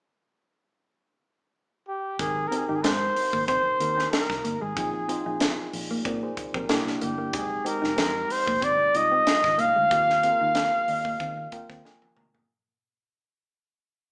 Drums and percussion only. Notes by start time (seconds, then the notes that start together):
2.19 kick, closed hi-hat
2.52 closed hi-hat
2.84 snare, closed hi-hat
3.17 open hi-hat
3.33 kick
3.48 kick, closed hi-hat
3.81 closed hi-hat
3.99 snare
4.13 snare, closed hi-hat
4.30 kick, snare
4.45 closed hi-hat
4.77 kick, closed hi-hat
5.09 closed hi-hat
5.40 snare, closed hi-hat
5.73 open hi-hat
6.05 kick, closed hi-hat
6.37 kick, closed hi-hat
6.54 kick
6.69 snare, closed hi-hat
6.87 snare
7.01 closed hi-hat
7.33 kick, closed hi-hat
7.66 closed hi-hat
7.84 snare
7.98 snare, closed hi-hat
8.30 open hi-hat
8.48 kick
8.62 kick, closed hi-hat
8.95 closed hi-hat
9.27 snare, closed hi-hat
9.44 kick, snare
9.59 closed hi-hat
9.91 kick, closed hi-hat
10.10 snare
10.23 closed hi-hat
10.55 snare, closed hi-hat
10.88 open hi-hat
11.05 kick
11.20 kick, closed hi-hat
11.52 kick, closed hi-hat
11.70 kick, snare
11.85 snare
12.02 high tom
12.17 mid tom
12.35 floor tom